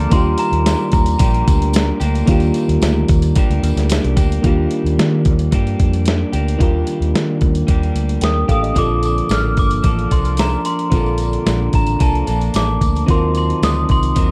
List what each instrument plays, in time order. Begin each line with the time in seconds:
Already playing: clean electric guitar D3 F3 A#3 D4 A4, reed electric piano G4, glockenspiel A#5
0.10 fingered electric bass D#2, clean electric guitar D#3 G3 A#3, reed electric piano A#3 D4 F4, glockenspiel C6, kick, closed hi-hat, tambourine
0.15 clean electric guitar D4 G4, reed electric piano G4
0.38 glockenspiel A#5, closed hi-hat, tambourine
0.52 fingered electric bass D#2, closed hi-hat
0.66 snare, closed hi-hat, tambourine
0.92 fingered electric bass D#2, glockenspiel A#5, kick, closed hi-hat, tambourine
1.06 closed hi-hat, tambourine
1.19 fingered electric bass A#1, clean electric guitar G3 A#3 D4 G4, kick, closed hi-hat, tambourine
1.34 closed hi-hat
1.47 fingered electric bass D2, kick, closed hi-hat, tambourine
1.62 closed hi-hat
1.73 snare, closed hi-hat, tambourine
2.00 fingered electric bass D2, clean electric guitar A#3 D4 G4, closed hi-hat, tambourine
2.15 closed hi-hat, tambourine
2.26 fingered electric bass D#2, clean electric guitar D#3 G3, reed electric piano A#3 D4 F4, kick, closed hi-hat, tambourine
2.30 clean electric guitar A#3 D4 G4, reed electric piano G4
2.40 closed hi-hat, tambourine
2.54 closed hi-hat, tambourine
2.69 fingered electric bass D#2, closed hi-hat
2.82 fingered electric bass D2, snare, closed hi-hat, tambourine
3.08 fingered electric bass D#2, kick, closed hi-hat, tambourine
3.22 closed hi-hat, tambourine
3.35 clean electric guitar G3 A#3 D4 G4, kick, closed hi-hat, tambourine
3.50 fingered electric bass D2, closed hi-hat
3.63 fingered electric bass D#2, closed hi-hat, tambourine
3.76 fingered electric bass D2, snare, closed hi-hat, tambourine
3.90 snare, closed hi-hat, tambourine
4.04 fingered electric bass C2, closed hi-hat
4.16 fingered electric bass D2, clean electric guitar A#3 D4 G4, kick, closed hi-hat, tambourine
4.32 closed hi-hat
4.42 fingered electric bass D#2, clean electric guitar D#3 G3, reed electric piano A#3 D4 F4, kick, closed hi-hat
4.46 clean electric guitar A#3 D4 G4, reed electric piano G4
4.71 closed hi-hat
4.84 fingered electric bass D#2, closed hi-hat
4.98 fingered electric bass D#3, snare, closed hi-hat
5.25 fingered electric bass D#2, kick, closed hi-hat
5.39 closed hi-hat
5.51 fingered electric bass G2, clean electric guitar G3 A#3 D4 G4, kick, closed hi-hat
5.67 closed hi-hat
5.80 fingered electric bass F2, kick, closed hi-hat
5.93 closed hi-hat
6.06 snare, closed hi-hat
6.32 fingered electric bass D2, clean electric guitar A#3 D4 G4, closed hi-hat
6.48 closed hi-hat
6.58 fingered electric bass D#2, clean electric guitar D#3 G3 A#3, reed electric piano A#3 D4 F4, kick, closed hi-hat
6.63 clean electric guitar D4 G4, reed electric piano A#4
6.87 closed hi-hat
7.01 fingered electric bass D#2, closed hi-hat
7.14 fingered electric bass D#3, snare, closed hi-hat
7.41 fingered electric bass D#2, kick, closed hi-hat
7.55 closed hi-hat
7.67 fingered electric bass D#2, clean electric guitar G3 A#3 D4 G4, kick, closed hi-hat
7.83 closed hi-hat
7.94 fingered electric bass D2, closed hi-hat
8.09 closed hi-hat
8.21 fingered electric bass D#2, reed electric piano A#4 G5, glockenspiel D#6, snare, closed hi-hat
8.48 fingered electric bass A1, clean electric guitar A#3 D4 G4, reed electric piano A4 F5, glockenspiel D#6, kick, closed hi-hat
8.62 reed electric piano G4 D#5, closed hi-hat
8.74 fingered electric bass A#1, clean electric guitar A#2 D3 F3 A#3, reed electric piano C4 D4 F4, kick, closed hi-hat, tambourine
8.78 clean electric guitar D4 A4, reed electric piano A4, glockenspiel D6
9.03 glockenspiel D6, closed hi-hat, tambourine
9.18 closed hi-hat
9.29 fingered electric bass A1, glockenspiel F6, snare, closed hi-hat, tambourine
9.57 fingered electric bass G1, glockenspiel D6, kick, closed hi-hat, tambourine
9.70 closed hi-hat, tambourine
9.83 fingered electric bass A1, clean electric guitar F3 A#3 D4 A4, kick, closed hi-hat, tambourine
9.99 closed hi-hat
10.10 fingered electric bass C2, clean electric guitar F3 A#3 D4 A4, glockenspiel C6, kick, closed hi-hat, tambourine
10.25 closed hi-hat, tambourine
10.37 glockenspiel A#5, snare, closed hi-hat, tambourine
10.65 glockenspiel C6, closed hi-hat, tambourine
10.79 closed hi-hat
10.90 fingered electric bass A#1, clean electric guitar A#2 D3 F3 A#3, reed electric piano C4 D4 F4, kick, closed hi-hat, tambourine
10.95 clean electric guitar D4 A4, reed electric piano A4
11.06 tambourine
11.18 closed hi-hat, tambourine
11.33 closed hi-hat
11.46 fingered electric bass A#1, snare, closed hi-hat, tambourine
11.73 fingered electric bass A1, glockenspiel A#5, kick, closed hi-hat, tambourine
11.87 closed hi-hat, tambourine
11.99 fingered electric bass C2, clean electric guitar F3 A#3 D4 A4, glockenspiel A5, kick, closed hi-hat, tambourine
12.15 closed hi-hat
12.26 fingered electric bass A#1, clean electric guitar F3 A#3 D4 A4, closed hi-hat, tambourine
12.41 closed hi-hat, tambourine
12.54 fingered electric bass A1, glockenspiel D6, snare, closed hi-hat, tambourine
12.81 fingered electric bass D2, kick, closed hi-hat, tambourine
12.95 closed hi-hat, tambourine
13.06 fingered electric bass D#2, clean electric guitar D#3 F#3 C4, reed electric piano C4 F4 F#4, kick, closed hi-hat, tambourine
13.11 clean electric guitar D#4 A#4, reed electric piano A#4, glockenspiel C6
13.35 glockenspiel C6, closed hi-hat, tambourine
13.50 closed hi-hat
13.62 fingered electric bass D2, glockenspiel D#6, snare, closed hi-hat, tambourine
13.89 fingered electric bass C2, glockenspiel C6, kick, closed hi-hat, tambourine
14.03 closed hi-hat, tambourine
14.15 fingered electric bass D#2, clean electric guitar F#3 C4 D#4 A#4, kick, closed hi-hat, tambourine